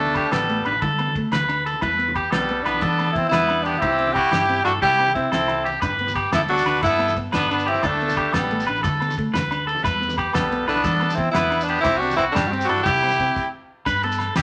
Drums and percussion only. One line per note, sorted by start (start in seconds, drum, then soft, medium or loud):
0.06 low conga medium
0.15 kick medium
0.15 ride medium
0.15 low agogo medium
0.32 snare medium
0.32 ride medium
0.32 high conga medium
0.32 low agogo medium
0.40 low conga medium
0.49 ride medium
0.65 ride medium
0.65 low conga soft
0.65 low agogo medium
0.72 low conga medium
0.82 kick medium
0.82 ride medium
0.82 high conga loud
0.99 ride soft
0.99 low agogo medium
1.07 low conga medium
1.15 kick medium
1.15 ride medium
1.32 snare medium
1.32 ride medium
1.32 high conga medium
1.32 low agogo medium
1.41 low conga medium
1.49 ride medium
1.49 low agogo medium
1.66 ride medium
1.73 low conga medium
1.81 kick medium
1.81 ride medium
1.81 high conga medium
1.81 low agogo medium
1.99 ride soft
2.08 low conga medium
2.15 kick medium
2.15 ride soft
2.15 low conga soft
2.15 low agogo medium
2.32 snare medium
2.32 ride medium
2.32 high conga medium
2.32 low agogo medium
2.41 low conga medium
2.49 ride medium
2.65 snare soft
2.65 ride medium
2.65 low conga soft
2.65 low agogo medium
2.74 low conga medium
2.81 kick medium
2.81 ride medium
2.81 high conga loud
2.99 ride soft
2.99 low agogo medium
3.07 low conga medium
3.16 kick medium
3.16 ride medium
3.32 snare medium
3.32 ride medium
3.32 high conga loud
3.32 low agogo medium
3.40 low conga medium
3.48 ride medium
3.48 low agogo medium
3.66 ride medium
3.73 low conga medium
3.82 kick medium
3.82 ride medium
3.82 high conga loud
3.82 low conga soft
3.82 low agogo medium
3.98 ride soft
4.07 low conga medium
4.15 kick medium
4.15 ride medium
4.15 low agogo medium
4.32 snare loud
4.32 ride medium
4.32 high conga loud
4.32 low agogo medium
4.41 low conga medium
4.50 ride soft
4.65 snare soft
4.65 ride medium
4.65 low agogo medium
4.75 low conga medium
4.82 kick medium
4.82 ride medium
4.82 high conga loud
4.99 ride soft
4.99 low conga soft
4.99 low agogo medium
5.07 low conga medium
5.16 kick medium
5.16 ride soft
5.25 low conga soft
5.32 snare medium
5.32 ride medium
5.32 high conga medium
5.32 low agogo medium
5.48 ride medium
5.48 low conga medium
5.48 low agogo medium
5.66 ride medium
5.66 low conga medium
5.82 kick medium
5.82 ride medium
5.82 high conga loud
5.82 low agogo medium
5.82 shekere loud
5.99 ride soft
6.07 low conga medium
6.07 shekere medium
6.15 kick medium
6.15 ride medium
6.15 low agogo medium
6.32 snare loud
6.32 ride medium
6.32 high conga loud
6.32 low agogo medium
6.32 shekere medium
6.42 low conga medium
6.48 ride medium
6.58 shekere medium
6.66 snare soft
6.66 ride medium
6.66 low conga soft
6.66 low agogo medium
6.75 low conga medium
6.75 shekere soft
6.83 kick medium
6.83 ride medium
6.83 high conga loud
6.83 shekere loud
6.99 ride medium
6.99 low agogo medium
6.99 shekere soft
7.08 low conga medium
7.08 shekere medium
7.17 kick medium
7.17 ride medium
7.32 snare medium
7.32 ride medium
7.32 high conga medium
7.32 low agogo medium
7.32 shekere medium
7.41 low conga medium
7.48 ride soft
7.48 low agogo medium
7.48 shekere soft
7.59 shekere medium
7.68 ride medium
7.74 low conga medium
7.74 shekere soft
7.83 kick medium
7.83 ride medium
7.83 high conga loud
7.83 low agogo medium
7.83 shekere medium
8.01 ride soft
8.08 low conga medium
8.08 shekere medium
8.17 kick medium
8.17 ride medium
8.17 low agogo medium
8.33 snare loud
8.33 ride medium
8.33 high conga medium
8.33 low agogo medium
8.33 shekere medium
8.42 low conga medium
8.51 ride medium
8.60 shekere medium
8.67 ride soft
8.67 low conga soft
8.67 low agogo medium
8.67 shekere soft
8.76 low conga medium
8.76 shekere soft
8.84 kick medium
8.84 ride medium
8.84 high conga loud
8.84 shekere medium
9.00 ride soft
9.00 low agogo medium
9.00 shekere soft
9.09 low conga medium
9.09 shekere medium
9.18 kick medium
9.18 ride medium
9.33 snare medium
9.33 ride medium
9.33 high conga loud
9.33 low agogo medium
9.33 shekere loud
9.51 ride medium
9.51 low agogo medium
9.51 shekere soft
9.69 ride medium
9.75 low conga medium
9.75 shekere soft
9.84 kick medium
9.84 ride medium
9.84 high conga loud
9.84 low agogo medium
9.84 shekere loud
10.03 ride medium
10.08 low conga medium
10.08 shekere medium
10.18 kick medium
10.18 ride medium
10.18 low agogo medium
10.33 snare medium
10.33 ride medium
10.33 high conga loud
10.33 low agogo medium
10.33 shekere loud
10.42 low conga medium
10.52 ride medium
10.68 snare soft
10.68 ride soft
10.68 low conga soft
10.68 low agogo medium
10.68 shekere soft
10.75 low conga medium
10.75 shekere soft
10.84 kick medium
10.84 ride medium
10.84 high conga loud
10.84 shekere loud
11.00 ride soft
11.00 low agogo medium
11.00 shekere soft
11.09 low conga medium
11.09 shekere medium
11.18 kick medium
11.18 ride soft
11.33 snare medium
11.33 ride medium
11.33 high conga medium
11.33 low agogo medium
11.33 shekere medium
11.43 low conga medium
11.50 ride medium
11.50 low agogo medium
11.50 shekere soft
11.61 shekere medium
11.68 ride medium
11.78 low conga medium
11.78 shekere soft
11.84 kick medium
11.84 ride medium
11.84 high conga loud
11.84 low conga soft
11.84 low agogo medium
11.84 shekere loud
12.03 ride medium
12.10 low conga medium
12.10 shekere medium
12.17 kick medium
12.17 ride medium
12.17 low agogo medium
12.35 snare loud
12.35 ride medium
12.35 high conga loud
12.35 low agogo medium
12.35 shekere loud
12.44 low conga medium
12.44 shekere soft
12.53 ride medium
12.53 low conga soft
12.61 shekere medium
12.69 ride medium
12.69 low agogo medium
12.77 low conga medium
12.86 kick medium
12.86 ride medium
12.86 high conga loud
12.86 shekere loud
13.02 ride soft
13.02 low agogo medium
13.10 low conga medium
13.10 shekere medium
13.19 kick medium
13.19 ride medium
13.36 kick medium
13.36 crash medium
13.85 kick loud
13.85 crash medium
13.85 low agogo medium
13.85 shekere medium
14.03 ride medium
14.12 shekere medium
14.19 snare soft
14.19 ride medium
14.19 low agogo medium
14.36 snare loud
14.36 ride medium
14.36 low agogo medium
14.36 shekere loud